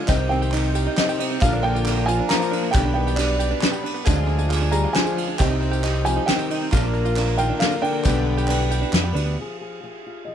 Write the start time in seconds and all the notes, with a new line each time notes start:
Already playing: D2 G#3 D4 G#4
0.06 C2 C3 D#3 G3 C4 D#4 G4 C5 D#5 G5, kick, clap, ride, tambourine
0.20 D#4
0.29 D#3 C4 G5, clap, tambourine
0.42 G4, tambourine
0.52 D#3 C4 D#4 G4, clap, ride
0.65 tambourine
0.75 G4, tambourine
0.87 D#4
0.97 C3 D#3 C4 D#4 G4 D#5, snare, clap, ride, tambourine
1.09 G4, tambourine
1.19 C4 D#4 G4, ride
1.31 C4
1.41 A#1 A#2 D3 F3 A#3 D4 F4 A#4 D5 F5 A#5, kick, clap, ride, tambourine
1.52 D4
1.63 D3 A#3 G5, clap, tambourine
1.75 F4, tambourine
1.85 F3 A#3 D4 A#4, clap, ride
1.97 A#3, tambourine
2.06 F3 F4 G#5, tambourine
2.19 D4
2.28 F3 A#3 D4 A#4 A#5, snare, clap, ride, tambourine
2.40 F4, tambourine
2.50 F3 A#3 D4 A#4, ride
2.63 A#3
2.71 B1 B2 D3 G3 B3 D4 G4 B4 G5 B5, kick, clap, ride, tambourine
2.75 B1 D4 B4 D5
2.84 D4
2.94 D#3 B3 G5
3.07 G4, tambourine
3.16 B2 B3 D4 G4 D5, clap, ride, tambourine
3.20 B4
3.39 G4, tambourine
3.51 D4, tambourine
3.61 B3 D4 G4 B4, snare, clap, ride
3.72 G4, tambourine
3.83 D4, clap, ride
3.94 B3, tambourine
4.05 D2 D3 F3 G#3 D4 F4 G#4 D5 G#5, kick, clap, ride, tambourine
4.15 F4
4.27 D4, clap, tambourine
4.38 G#4, tambourine
4.49 F3 G#3 D4 F4 G#4, clap, ride
4.60 D4, tambourine
4.71 G3 G#4 A#5, tambourine
4.83 F4
4.92 F3 G#3 D4 G#5, snare, clap, ride
4.97 G#4
5.06 G#4, tambourine
5.17 F4, ride
5.27 D4
5.38 C2 C3 D#3 G3 C4 D#4 G4 C5 D#5 G5, kick, clap, ride, tambourine
5.49 D#4
5.60 C4, clap, tambourine
5.71 G4, tambourine
5.83 D#3 C4 D#4 G4, clap, ride
5.96 tambourine
6.04 F3 D#4 G4 G#5, tambourine
6.08 C4
6.16 D#4
6.26 D#3 C4 D#4 G4 G5, snare, clap, ride, tambourine
6.39 G4, tambourine
6.50 C4 D#4 G4, ride
6.61 C4
6.72 A#1 A#2 F3 A#3 D4 F4 A#4 D5 A#5, kick, clap, ride, tambourine
6.83 D4
6.94 A#3, clap, tambourine
7.05 F4, tambourine
7.17 F3 A#3 D4 A#4, clap, ride
7.28 A#3, tambourine
7.37 D#3 D4 F4 A#4 G5, tambourine
7.42 A#3
7.49 D4
7.57 D3 F3 A#3 F5, clap
7.62 A#3 D4 A#4, snare, ride
7.71 F4, tambourine
7.80 D3 D4 G5
7.84 ride
7.92 A#3
8.04 B1 B2 G3 B3 D4 G4 B4 D5 B5, kick, clap, ride, tambourine
8.15 D4, clap
8.26 B3
8.37 G4, tambourine
8.48 B3 D4 G4 B4, clap, ride
8.60 clap, tambourine
8.71 G4, tambourine
8.81 D4, tambourine
8.92 F2 B3 D4 G4 B4, snare, clap, ride, tambourine
9.04 G4, clap
9.13 D2 D4 G4 B4, ride
9.26 B3
9.39 D3 F3 F4 G#4
9.61 G#4
9.83 F3 G#4
10.06 F4
10.25 F3 D#5